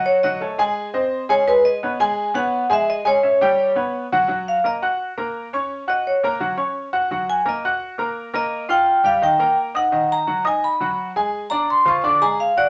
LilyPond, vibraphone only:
\new Staff \with { instrumentName = "Vibraphone" } { \time 4/4 \key cis \dorian \tempo 4 = 170 cis''8 dis''2 r4 cis''8 | b'8 dis''4 gis''4 fis''4 e''8 | dis''8 cis''2 r4. | \key ges \major r8 f''8 ees''8 r2 r8 |
r8 ees''8 des''8 r2 r8 | r8 aes''8 ees''8 r2 ees''8~ | ees''8 g''4 f''8 g''4 r8 ges''8~ | ges''8 bes''4 aes''8 ces'''4 r4 |
r8 bes''8 c'''8 des'''8 d'''8 bes''8 f''8 d''8 | }